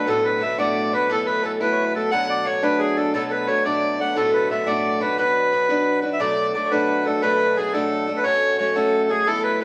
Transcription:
Already playing: harmonium B2 F#3
0.07 steel-string acoustic guitar D2 A2 D3 A3 B3 F#4, soprano saxophone A4, accordion A4
0.24 soprano saxophone B4, accordion B4
0.40 steel-string acoustic guitar D3 A3 B3 F#4, accordion E5
0.58 steel-string acoustic guitar D2 A2 D3 A3 B3 F#4, soprano saxophone D5, accordion D5
0.92 steel-string acoustic guitar D3 A3 B3 F#4, soprano saxophone B4, accordion B4
1.10 steel-string acoustic guitar E3 A3 B3 E4, soprano saxophone A4, accordion A4
1.26 soprano saxophone B4, accordion B4
1.43 steel-string acoustic guitar E3 A3 B3 E4, soprano saxophone A4, accordion A4
1.60 steel-string acoustic guitar E3 A3 B3 E4, soprano saxophone B4, accordion B4
1.72 soprano saxophone C#5
1.84 soprano saxophone B4
1.95 steel-string acoustic guitar A3 B3 E4, accordion A4, soprano saxophone A4
2.11 steel-string acoustic guitar B2 F#3 A3 B3 D4, harmonium B2 F#3, accordion F#5, soprano saxophone F#5
2.30 accordion D5
2.46 steel-string acoustic guitar F#3 A3 B3 D4, soprano saxophone C#5, accordion C#5
2.63 steel-string acoustic guitar B2 F#3 A3 B3 D4, accordion B4, soprano saxophone B4
2.79 accordion G#4, soprano saxophone G#4
2.97 steel-string acoustic guitar A3 B3 D4, accordion A4, soprano saxophone A4
3.14 steel-string acoustic guitar B2 F#3 A3 B3 D4, soprano saxophone A4, accordion A4
3.30 soprano saxophone B4, accordion B4
3.47 steel-string acoustic guitar F#3 A3 B3 D4, soprano saxophone C#5, accordion C#5
3.65 steel-string acoustic guitar B2 F#3 A3 B3 D4, soprano saxophone D5, accordion D5
3.99 steel-string acoustic guitar A3 B3 D4, accordion F#5
4.10 soprano saxophone B4
4.15 steel-string acoustic guitar D2 A2 D3 A3 B3 F#4, soprano saxophone A4, accordion A4
4.33 accordion B4
4.50 steel-string acoustic guitar D3 A3 B3 F#4, accordion E5
4.66 steel-string acoustic guitar D2 A2 D3 A3 B3 F#4, soprano saxophone D5, accordion D5
4.78 soprano saxophone D5
4.89 soprano saxophone D5
5.01 steel-string acoustic guitar D3 A3 B3 F#4, soprano saxophone B4, accordion B4
5.18 steel-string acoustic guitar B3 D4 F#4 B4, soprano saxophone B4, accordion B4
5.52 steel-string acoustic guitar B3 D4 F#4 B4
5.69 steel-string acoustic guitar B3 D4 F#4 B4
6.02 steel-string acoustic guitar D4 F#4 B4
6.13 accordion E5
6.20 steel-string acoustic guitar B2 F#3 A3 D4 F#4, harmonium B2 F#3, accordion D5, soprano saxophone D5
6.54 steel-string acoustic guitar F#3 A3 D4 F#4, accordion D5
6.65 soprano saxophone C#5
6.71 steel-string acoustic guitar B2 F#3 A3 D4 F#4, accordion B4, soprano saxophone B4
7.05 steel-string acoustic guitar A3 D4 F#4, accordion A4, soprano saxophone A4
7.22 steel-string acoustic guitar B2 F#3 A3 D4 F#4, accordion B4, soprano saxophone B4
7.56 steel-string acoustic guitar F#3 A3 D4 F#4, accordion G#4, soprano saxophone G#4
7.73 steel-string acoustic guitar B2 F#3 A3 D4 F#4, accordion A4, soprano saxophone A4
8.07 steel-string acoustic guitar A3 D4 F#4
8.17 accordion B4
8.24 steel-string acoustic guitar F#3 A3 C#4 F#4, accordion C#5, soprano saxophone C#5
8.58 steel-string acoustic guitar F#3 A3 C#4 F#4, accordion C#5, soprano saxophone C#5
8.75 steel-string acoustic guitar F#3 A3 C#4 F#4, accordion A4, soprano saxophone A4
9.09 steel-string acoustic guitar A3 C#4 F#4, accordion G#4, soprano saxophone G#4
9.27 steel-string acoustic guitar E3 A3 B3 E4, accordion A4, soprano saxophone A4
9.43 accordion B4, soprano saxophone B4
9.60 steel-string acoustic guitar E3, accordion B4

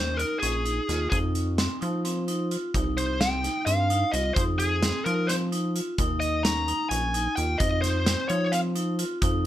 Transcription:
Already playing: analog synth bass D#2, vibraphone C#4, lead electric guitar C5
0.17 vibraphone D#4, lead electric guitar A#4, closed hi-hat
0.39 analog synth bass A#1, vibraphone C#4, lead electric guitar G#4, closed hi-hat
0.65 vibraphone D#4, closed hi-hat
0.88 analog synth bass D#2, vibraphone F4, snare, closed hi-hat
1.10 analog synth bass F2, vibraphone D#4, lead electric guitar G#4, kick, closed hi-hat
1.35 closed hi-hat
1.58 vibraphone C4, snare, closed hi-hat
1.81 analog synth bass F3, vibraphone D#4, closed hi-hat
2.05 vibraphone C4, closed hi-hat
2.28 vibraphone D#4, closed hi-hat
2.51 vibraphone F4, closed hi-hat
2.74 analog synth bass C2, vibraphone D#4, kick, closed hi-hat
2.97 lead electric guitar C5, closed hi-hat
3.21 vibraphone C4, lead electric guitar G5, snare, closed hi-hat
3.44 vibraphone D#4, snare, closed hi-hat
3.66 analog synth bass G2, vibraphone C4, lead electric guitar F5, closed hi-hat
3.90 vibraphone D#4, closed hi-hat
4.12 analog synth bass C2, vibraphone F4, lead electric guitar D#5, closed hi-hat
4.34 analog synth bass F2, vibraphone D#4, lead electric guitar C5, kick, closed hi-hat
4.58 lead electric guitar G#4, closed hi-hat
4.82 vibraphone C4, snare, closed hi-hat
5.05 analog synth bass F3, vibraphone D#4, lead electric guitar A#4, closed hi-hat
5.27 vibraphone C4, lead electric guitar C5, snare, closed hi-hat
5.52 vibraphone D#4, closed hi-hat
5.76 vibraphone F4, closed hi-hat
5.98 analog synth bass D#2, vibraphone D#4, kick, closed hi-hat
6.20 lead electric guitar D#5, closed hi-hat
6.43 vibraphone C#4, lead electric guitar A#5, snare, closed hi-hat
6.68 vibraphone D#4, closed hi-hat
6.89 analog synth bass A#1, vibraphone C#4, lead electric guitar G#5, closed hi-hat
7.14 vibraphone D#4, closed hi-hat
7.36 analog synth bass D#2, vibraphone F4, lead electric guitar G5, closed hi-hat
7.58 analog synth bass F2, vibraphone D#4, lead electric guitar D#5, kick, closed hi-hat
7.82 lead electric guitar C5, snare, closed hi-hat
8.06 vibraphone C4, snare, closed hi-hat
8.28 analog synth bass F3, vibraphone D#4, lead electric guitar C#5, closed hi-hat
8.52 vibraphone C4, lead electric guitar F5, closed hi-hat
8.76 vibraphone D#4, closed hi-hat
8.99 vibraphone F4, closed hi-hat
9.22 analog synth bass F2, vibraphone D#4, kick, closed hi-hat

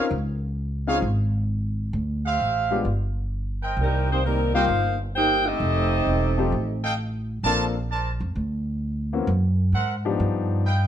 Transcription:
Already playing: grand piano A#4
0.11 upright bass C#2
0.87 grand piano C4 C#4 D#4 F4 G#4, trumpet section G#4 C5 C#5 F5
1.02 upright bass G#1
1.93 upright bass D2
2.26 trumpet section G4 C5 E5 F5
2.40 upright bass A1
2.71 grand piano G#3 B3 D4 F4 G4
2.85 upright bass G1
3.63 trumpet section A#4 C5 D#5 G5
3.77 upright bass C2, trombone section D#3 G3 A#3
3.82 saxophone section G3 C4 D#4 A#4
4.09 trombone section D#3 G3 C4, saxophone section A#3 D#4 G4 C5
4.24 trombone section D#3 G3 A#3, saxophone section G3 C4 D#4 A#4
4.54 grand piano G3 A#3 C4 D#4 G4, trombone section G3 A#3 F4, saxophone section D#4 A#4 C5 F5, trumpet section A#4 C5 D#5 G5
4.68 upright bass G1
5.15 trombone section A#3 D#4 G4, saxophone section D#4 A#4 C5 G5
5.46 trombone section A3 C4 D#4, saxophone section C4 G4 A4 D#5
5.60 upright bass F1
6.07 upright bass E1
6.38 grand piano F3 A3 C4 D#4 G4
6.52 upright bass A1
6.84 trumpet section A4 D#5 F5 G5
7.43 upright bass A#1, grand piano F3 A#3 C4 D4 A4, trumpet section A#4 C5 D5 A5
7.91 trumpet section A#4 C5 D5 A5
8.20 upright bass F2
8.35 upright bass D2
9.13 grand piano E3 A#3 C4 C#4 F#4
9.27 upright bass F#2
9.72 upright bass G#2, trumpet section A#4 C5 E5 F#5
10.05 grand piano F3 B3 D4 D#4 G4
10.20 upright bass G2
10.66 trumpet section B4 D#5 F5 G5

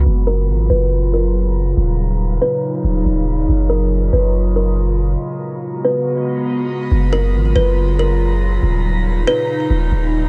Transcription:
0.06 808-style bass F#1, ambient pad A#2 C#3 F#3 F4
0.27 kalimba A#4
0.49 808-style bass G#1
0.70 808-style bass F#1, kalimba B4
1.14 kalimba A#4
1.77 808-style bass D#1, ambient pad D#4
2.42 kalimba B4
2.84 808-style bass D#1
3.06 808-style bass D#1
3.49 808-style bass F#1, ambient pad F4
3.70 kalimba A#4
4.13 808-style bass F#1, kalimba B4
4.56 kalimba A#4
5.20 ambient pad C#3 G#3 B3 F#4
5.85 kalimba B4
6.92 808-style bass F#1, ambient pad A#2 C#3 F#3 F4
7.13 kalimba A#4
7.35 808-style bass G#1
7.56 808-style bass F#1, kalimba B4
7.99 kalimba A#4
8.63 808-style bass D#1, ambient pad C#3 D#4
9.27 kalimba B4
9.70 808-style bass D#1
9.92 808-style bass D#1

